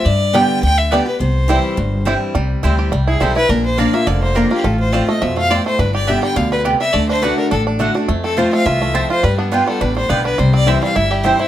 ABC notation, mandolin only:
X:1
M:4/4
L:1/8
Q:"Swing" 1/4=209
K:C
V:1 name="Mandolin"
z2 [B,Gdg] z3 [B,Gdg] z | z2 [CEcg] z3 [CEcg] z | z2 [CEcg] z3 [CEcg] z | z2 [_B,Fd_b] z3 [B,Fdb] z |
z2 [CFca] z3 [CFca] z | z2 [B,Gdg] z3 [B,Gdg] z | z2 [A,^Fd^f] z3 [A,Fdf] z | z2 [CFca] z3 [CFca] z |
z2 [B,FBg] z3 [B,FBg] z | z2 [CEcg] z3 [CEcg] z |]